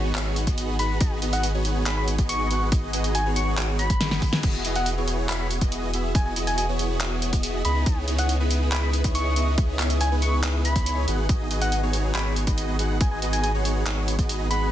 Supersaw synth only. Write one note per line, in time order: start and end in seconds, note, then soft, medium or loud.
0.00 0.12 B3 medium
0.00 0.12 D#4 medium
0.00 0.12 F#4 medium
0.00 0.12 G#4 medium
0.00 0.12 C#5 loud
0.15 0.45 B3 medium
0.15 0.45 D#4 medium
0.15 0.45 F#4 medium
0.15 0.45 G#4 medium
0.15 0.45 C#5 medium
0.47 0.77 B3 medium
0.47 0.77 D#4 medium
0.47 0.77 F#4 medium
0.47 0.77 G#4 medium
0.47 0.77 D#5 loud
0.79 0.98 B3 medium
0.79 0.98 D#4 medium
0.79 0.98 F#4 medium
0.79 0.98 G#4 medium
0.79 0.98 F#5 medium
1.01 1.20 B3 medium
1.01 1.20 D#4 medium
1.01 1.20 G#4 medium
1.01 1.20 D#5 loud
1.22 1.52 B3 medium
1.22 1.52 D#4 medium
1.22 1.52 F#4 medium
1.22 1.52 G#4 medium
1.22 1.52 D#5 medium
1.54 1.84 B3 medium
1.54 1.84 D#4 medium
1.54 1.84 F#4 medium
1.54 1.84 G#4 medium
1.54 1.84 C#5 loud
1.86 2.16 B3 medium
1.86 2.16 D#4 medium
1.86 2.16 F#4 medium
1.86 2.16 G#4 medium
1.86 2.16 C#5 medium
2.19 2.48 B3 medium
2.19 2.48 D#4 medium
2.19 2.48 F#4 medium
2.19 2.48 G#4 medium
2.19 2.48 D#5 loud
2.51 2.70 B3 medium
2.51 2.70 D#4 medium
2.51 2.70 F#4 medium
2.51 2.70 G#4 medium
2.51 2.70 F#5 medium
2.72 2.91 B3 medium
2.72 2.91 D#4 medium
2.72 2.91 F#4 medium
2.72 2.91 G#4 medium
2.93 3.23 B3 medium
2.93 3.23 D#4 medium
2.93 3.23 F#4 medium
2.93 3.23 G#4 medium
2.93 3.23 D#5 medium
3.26 3.55 B3 medium
3.26 3.55 D#4 medium
3.26 3.55 F#4 medium
3.26 3.55 G#4 medium
3.26 3.55 C#5 loud
3.58 3.88 B3 medium
3.58 3.88 D#4 medium
3.58 3.88 F#4 medium
3.58 3.88 G#4 medium
3.58 3.88 C#5 medium
4.01 4.41 B3 medium
4.01 4.41 D#4 medium
4.01 4.41 F#4 medium
4.01 4.41 G#4 medium
4.01 4.41 G#5 medium
4.44 4.62 B3 medium
4.44 4.62 E4 medium
4.44 4.62 F#4 medium
4.44 4.62 G#4 medium
4.44 4.62 D#5 medium
4.65 4.95 B3 medium
4.65 4.95 E4 medium
4.65 4.95 F#4 medium
4.65 4.95 G#4 medium
4.65 4.95 D#5 medium
4.97 5.27 B3 medium
4.97 5.27 E4 medium
4.97 5.27 F#4 medium
4.97 5.27 G#4 medium
4.97 5.27 C#5 loud
5.29 5.59 B3 medium
5.62 5.91 B3 medium
5.62 5.91 E4 medium
5.62 5.91 F#4 medium
5.62 5.91 G#4 medium
5.62 5.91 D#5 loud
5.93 6.12 B3 medium
5.93 6.12 E4 medium
5.93 6.12 F#4 medium
5.93 6.12 G#4 medium
5.93 6.12 E5 medium
6.36 6.66 B3 medium
6.36 6.66 E4 medium
6.36 6.66 F#4 medium
6.36 6.66 G#4 medium
6.36 6.66 D#5 medium
6.69 6.98 B3 medium
6.69 6.98 E4 medium
6.69 6.98 F#4 medium
6.69 6.98 G#4 medium
6.69 6.98 C#5 loud
7.01 7.30 B3 medium
7.01 7.30 E4 medium
7.01 7.30 F#4 medium
7.01 7.30 G#4 medium
7.01 7.30 C#5 medium
7.33 7.62 B3 medium
7.33 7.62 E4 medium
7.33 7.62 F#4 medium
7.33 7.62 G#4 medium
7.33 7.62 D#5 loud
7.65 7.84 B3 medium
7.65 7.84 D#4 medium
7.65 7.84 E4 medium
7.65 7.84 G#4 medium
7.65 7.84 D#5 medium
8.08 8.37 B3 medium
8.08 8.37 D#4 medium
8.08 8.37 E4 medium
8.08 8.37 G#4 medium
8.08 8.37 C#5 medium
8.40 8.70 B3 medium
8.40 8.70 D#4 medium
8.40 8.70 E4 medium
8.40 8.70 G#4 medium
8.40 8.70 B4 loud
8.72 9.02 E4 medium
8.72 9.02 G#4 medium
8.72 9.02 B4 medium
9.04 9.34 B3 loud
9.04 9.34 D#4 medium
9.04 9.34 E4 medium
9.04 9.34 G#4 medium
9.04 9.34 C#5 loud
9.36 9.55 B3 medium
9.36 9.55 D#4 medium
9.36 9.55 E4 medium
9.36 9.55 G#4 medium
9.36 9.55 D#5 medium
9.58 9.77 B3 medium
9.58 9.77 D#4 medium
9.58 9.77 G#4 medium
9.58 9.77 C#5 loud
9.79 10.09 B3 medium
9.79 10.09 D#4 medium
9.79 10.09 E4 medium
9.79 10.09 G#4 medium
9.79 10.09 C#5 medium
10.11 10.41 B3 medium
10.11 10.41 D#4 medium
10.11 10.41 E4 medium
10.11 10.41 G#4 medium
10.11 10.41 B4 loud
10.43 10.73 B3 medium
10.43 10.73 D#4 medium
10.43 10.73 E4 medium
10.43 10.73 G#4 medium
10.43 10.73 B4 medium
10.76 11.05 B3 medium
10.76 11.05 D#4 medium
10.76 11.05 E4 medium
10.76 11.05 G#4 medium
10.76 11.05 C#5 loud
11.08 11.27 B3 medium
11.08 11.27 D#4 medium
11.08 11.27 F#4 medium
11.08 11.27 G#4 medium
11.08 11.27 F#5 medium
11.29 11.48 B3 medium
11.29 11.48 D#4 medium
11.29 11.48 F#4 medium
11.29 11.48 G#4 medium
11.29 11.48 D#5 loud
11.51 11.80 B3 medium
11.51 11.80 D#4 medium
11.51 11.80 F#4 medium
11.51 11.80 G#4 medium
11.51 11.80 D#5 medium
11.83 12.12 B3 medium
11.83 12.12 D#4 medium
11.83 12.12 F#4 medium
11.83 12.12 G#4 medium
11.83 12.12 C#5 loud
12.15 12.45 B3 medium
12.15 12.45 D#4 medium
12.15 12.45 F#4 medium
12.15 12.45 G#4 medium
12.15 12.45 C#5 loud
12.47 12.77 B3 loud
12.47 12.77 D#4 medium
12.47 12.77 F#4 medium
12.47 12.77 G#4 medium
12.47 12.77 D#5 loud
12.79 12.98 B3 medium
12.79 12.98 D#4 medium
12.79 12.98 F#4 medium
12.79 12.98 G#4 medium
12.79 12.98 F#5 medium
13.01 13.20 B3 medium
13.01 13.20 D#4 medium
13.01 13.20 G#4 medium
13.01 13.20 D#5 loud
13.22 13.52 B3 medium
13.22 13.52 D#4 medium
13.22 13.52 F#4 medium
13.22 13.52 G#4 medium
13.22 13.52 D#5 medium
13.54 13.84 B3 medium
13.54 13.84 D#4 medium
13.54 13.84 F#4 medium
13.54 13.84 G#4 medium
13.54 13.84 C#5 loud
13.86 14.16 D#4 medium
13.86 14.16 F#4 medium
13.86 14.16 G#4 medium
13.86 14.16 C#5 medium
14.19 14.48 B3 medium
14.19 14.48 D#4 medium
14.19 14.48 F#4 medium
14.19 14.48 G#4 medium
14.19 14.48 D#5 loud
14.51 14.70 B3 medium
14.51 14.70 D#4 medium
14.51 14.70 F#4 medium
14.51 14.70 G#4 medium
14.51 14.70 F#5 medium